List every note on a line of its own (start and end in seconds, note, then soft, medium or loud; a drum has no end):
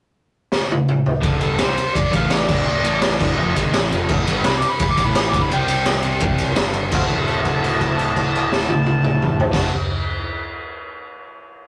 0.52 snare medium
0.71 high tom medium
0.89 mid tom medium
1.06 floor tom medium
1.21 1.40 D1 medium
1.21 1.39 D2 medium
1.21 1.40 A2 medium
1.21 1.40 D3 medium
1.21 kick loud
1.21 ride loud
1.40 1.59 G1 medium
1.40 1.58 G2 medium
1.40 1.59 D3 medium
1.40 1.58 G3 medium
1.40 1.59 A4 medium
1.40 ride medium
1.58 1.77 C2 medium
1.58 1.76 C3 medium
1.58 1.77 G3 medium
1.58 1.77 C4 medium
1.58 1.97 C5 medium
1.58 snare loud
1.58 ride loud
1.76 muted overdriven electric guitar stroke medium
1.76 muted fingered electric bass stroke soft
1.76 ride medium
1.95 2.12 D5 loud
1.95 kick loud
1.95 ride loud
2.11 2.47 A1 loud
2.11 2.47 A2 medium
2.11 2.48 E3 medium
2.11 2.48 A3 loud
2.11 2.35 F5 medium
2.11 kick medium
2.11 ride medium
2.30 3.37 D5 medium
2.30 snare loud
2.30 ride loud
2.47 2.66 D1 loud
2.47 2.65 D2 medium
2.47 2.65 A2 medium
2.47 2.66 D3 loud
2.47 kick loud
2.47 crash loud
2.66 2.84 D1 medium
2.66 2.81 D2 medium
2.66 2.81 A2 medium
2.84 3.19 A1 medium
2.84 3.18 A2 loud
2.84 3.20 E3 loud
2.84 3.20 A3 loud
2.84 ride medium
3.01 snare loud
3.01 ride medium
3.19 3.37 D1 loud
3.19 3.37 D2 medium
3.19 3.37 A2 loud
3.19 3.38 D3 loud
3.19 kick loud
3.19 crash medium
3.37 3.56 F1 medium
3.37 3.54 F2 loud
3.37 3.55 C3 loud
3.37 3.56 F3 loud
3.54 3.73 G#1 loud
3.54 3.71 G#2 medium
3.54 3.72 D#3 medium
3.54 3.73 G#3 loud
3.54 kick medium
3.54 ride medium
3.72 3.90 A2 loud
3.72 3.91 E3 loud
3.72 3.91 A3 loud
3.72 snare loud
3.72 ride loud
3.76 3.92 A1 loud
3.90 4.09 F1 loud
3.90 4.08 F2 medium
3.90 4.09 C3 loud
3.90 4.09 F3 loud
3.90 ride medium
4.09 4.26 D1 loud
4.09 4.26 D2 medium
4.09 4.26 A2 medium
4.09 4.25 D3 loud
4.09 kick loud
4.09 crash medium
4.26 4.44 G1 medium
4.26 4.44 G2 loud
4.26 4.44 D3 loud
4.26 4.44 G3 loud
4.26 ride medium
4.44 4.62 C2 loud
4.44 4.62 C3 loud
4.44 4.63 G3 loud
4.44 4.63 C4 loud
4.44 4.61 B5 loud
4.44 snare loud
4.44 ride medium
4.59 4.72 D6 loud
4.59 muted overdriven electric guitar stroke medium
4.59 ride medium
4.64 muted fingered electric bass stroke soft
4.71 4.80 B5 medium
4.79 4.92 B5 medium
4.79 kick loud
4.79 ride loud
4.91 5.07 D6 loud
4.97 5.31 A1 medium
4.97 5.32 A2 medium
4.97 5.33 E3 loud
4.97 5.34 A3 loud
4.97 kick medium
4.97 ride medium
5.05 5.15 B5 medium
5.15 5.31 B5 medium
5.15 snare loud
5.15 ride loud
5.30 5.50 D2 medium
5.30 5.44 D6 loud
5.30 kick loud
5.34 5.50 D1 medium
5.34 5.51 A2 medium
5.34 5.52 D3 loud
5.34 ride medium
5.42 5.52 B5 loud
5.50 6.53 C2 loud
5.50 6.56 C3 medium
5.50 6.56 G3 medium
5.50 6.57 C4 loud
5.50 5.87 G5 loud
5.50 ride loud
5.68 ride medium
5.85 snare loud
5.85 ride loud
6.02 ride medium
6.20 kick loud
6.20 ride loud
6.38 ride medium
6.56 6.90 G1 loud
6.56 6.90 G2 medium
6.56 6.91 D3 medium
6.56 6.92 G3 loud
6.56 snare loud
6.56 ride loud
6.73 ride medium
6.91 9.44 D1 loud
6.91 9.51 D2 medium
6.91 9.52 A2 medium
6.91 9.53 D3 medium
6.91 9.54 A3 loud
6.91 9.55 F#4 loud
6.91 kick loud
6.91 crash medium
6.96 7.02 C5 medium
6.96 7.02 F5 medium
6.96 9.45 A5 loud
7.10 kick medium
7.10 crash soft
7.27 crash soft
7.45 kick medium
7.45 crash soft
7.64 crash soft
7.81 kick medium
7.81 crash medium
7.99 crash soft
8.16 kick medium
8.16 crash medium
8.35 crash medium
8.52 snare medium
8.69 high tom medium
8.86 high tom medium
9.04 mid tom loud
9.22 mid tom medium
9.40 floor tom loud
9.51 9.68 D1 medium
9.51 9.67 D2 loud
9.51 9.68 A2 medium
9.51 9.68 D3 loud
9.51 9.69 A3 loud
9.51 9.68 A5 medium
9.51 kick loud
9.51 snare medium
9.51 crash medium
9.56 9.70 F#4 loud